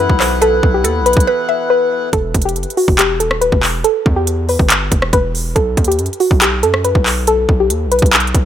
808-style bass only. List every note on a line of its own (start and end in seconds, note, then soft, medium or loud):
0.10 0.61 B1 loud
0.63 0.86 B1 loud
0.84 1.02 D#2 loud
1.01 1.16 B1 loud
1.17 1.27 B1 loud
2.13 2.34 E1 loud
2.35 2.57 E1 loud
2.56 2.66 F#1 loud
2.88 3.32 E1 loud
3.31 3.51 D#1 medium
3.52 3.83 E1 loud
4.06 4.57 E2 loud
4.59 4.90 G1 loud
4.92 5.12 E1 loud
5.13 5.54 E1 loud
5.56 5.76 B1 loud
5.77 6.00 D#2 loud
5.99 6.09 F#2 loud
6.31 6.65 B1 loud
6.63 6.94 F#2 loud
6.95 7.47 B1 loud
7.49 7.72 B1 loud
7.70 7.88 D#2 loud
7.86 8.02 B1 loud
8.02 8.33 B1 loud
8.35 8.45 B1 loud